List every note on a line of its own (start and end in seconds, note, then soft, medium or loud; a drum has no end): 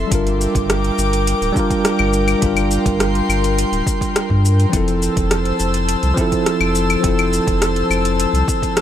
0.08 0.47 G1 loud
0.08 1.51 G3 medium
0.08 1.52 D4 medium
0.08 kick loud
0.08 closed hi-hat medium
0.12 1.53 F4 medium
0.12 4.70 A#4 medium
0.12 1.54 A#4 loud
0.12 4.69 G5 medium
0.12 2.41 D6 medium
0.12 shaker soft
0.27 closed hi-hat soft
0.27 shaker soft
0.41 shaker medium
0.55 0.91 G1 loud
0.55 kick loud
0.55 closed hi-hat soft
0.55 shaker soft
0.70 cross-stick loud
0.70 closed hi-hat medium
0.70 shaker soft
0.84 closed hi-hat soft
0.98 1.34 G1 loud
0.98 shaker medium
1.13 closed hi-hat soft
1.13 shaker soft
1.27 closed hi-hat medium
1.27 shaker soft
1.42 1.51 D1 loud
1.42 closed hi-hat soft
1.42 shaker soft
1.52 2.37 G3 loud
1.52 2.38 D4 medium
1.52 kick loud
1.56 2.40 F4 medium
1.56 2.41 A#4 loud
1.56 shaker medium
1.70 kick medium
1.70 closed hi-hat soft
1.70 shaker soft
1.85 cross-stick loud
1.85 closed hi-hat medium
1.85 shaker soft
1.99 2.35 G1 loud
1.99 claves medium
2.13 shaker medium
2.28 closed hi-hat soft
2.28 claves medium
2.28 shaker soft
2.39 2.78 G1 loud
2.39 4.39 G3 medium
2.39 4.40 D4 medium
2.39 kick loud
2.39 closed hi-hat medium
2.39 shaker soft
2.43 4.42 F4 medium
2.43 4.43 A#4 medium
2.43 4.72 C6 medium
2.57 closed hi-hat soft
2.57 claves medium
2.57 shaker soft
2.71 shaker medium
2.86 3.22 G1 loud
2.86 kick loud
2.86 closed hi-hat soft
2.86 shaker soft
3.00 cross-stick loud
3.00 closed hi-hat medium
3.00 shaker soft
3.15 closed hi-hat soft
3.29 3.65 G1 loud
3.29 claves medium
3.29 shaker medium
3.44 closed hi-hat soft
3.44 shaker soft
3.58 closed hi-hat medium
3.58 shaker soft
3.72 3.82 D1 loud
3.72 closed hi-hat soft
3.72 shaker soft
3.87 kick loud
3.87 shaker medium
4.01 kick medium
4.01 closed hi-hat soft
4.01 shaker soft
4.16 cross-stick loud
4.16 closed hi-hat medium
4.16 shaker soft
4.30 4.66 G2 medium
4.30 kick medium
4.45 shaker medium
4.60 closed hi-hat soft
4.60 shaker soft
4.70 5.09 F1 loud
4.70 6.12 F3 medium
4.70 6.14 C4 medium
4.70 8.81 C5 medium
4.70 8.81 A5 medium
4.70 kick loud
4.70 closed hi-hat medium
4.70 shaker soft
4.74 6.15 E4 medium
4.74 6.16 A4 medium
4.74 8.81 E6 medium
4.88 closed hi-hat soft
4.88 shaker soft
5.02 shaker medium
5.16 5.52 F1 loud
5.16 kick loud
5.16 closed hi-hat soft
5.16 shaker soft
5.31 cross-stick loud
5.31 closed hi-hat medium
5.31 shaker soft
5.45 closed hi-hat soft
5.60 5.96 F1 loud
5.60 shaker medium
5.74 closed hi-hat soft
5.74 shaker soft
5.89 closed hi-hat medium
5.89 shaker soft
6.03 6.13 C2 loud
6.03 closed hi-hat soft
6.03 shaker soft
6.14 6.99 F3 loud
6.14 7.00 C4 medium
6.14 kick loud
6.14 shaker medium
6.19 7.01 E4 medium
6.19 7.02 A4 loud
6.32 kick medium
6.32 closed hi-hat soft
6.32 shaker soft
6.46 cross-stick medium
6.46 closed hi-hat medium
6.46 shaker soft
6.61 6.96 F1 loud
6.61 claves medium
6.75 shaker medium
6.90 closed hi-hat soft
6.90 claves medium
6.90 shaker soft
7.00 7.40 F1 loud
7.00 8.81 F3 medium
7.00 8.81 C4 medium
7.00 kick loud
7.00 closed hi-hat medium
7.00 shaker soft
7.05 8.81 E4 medium
7.05 8.81 A4 medium
7.19 closed hi-hat soft
7.19 claves medium
7.19 shaker soft
7.33 shaker medium
7.47 7.83 F1 loud
7.47 kick loud
7.47 closed hi-hat soft
7.47 shaker soft
7.62 cross-stick loud
7.62 closed hi-hat medium
7.62 shaker soft
7.76 closed hi-hat soft
7.90 8.26 F1 loud
7.90 claves medium
7.90 shaker medium
8.05 closed hi-hat soft
8.05 shaker soft
8.20 closed hi-hat medium
8.20 shaker soft
8.33 8.43 C2 medium
8.33 closed hi-hat soft
8.33 shaker soft
8.48 kick loud
8.48 shaker medium
8.62 kick medium
8.62 closed hi-hat soft
8.62 shaker soft
8.77 cross-stick loud
8.77 closed hi-hat medium
8.77 shaker soft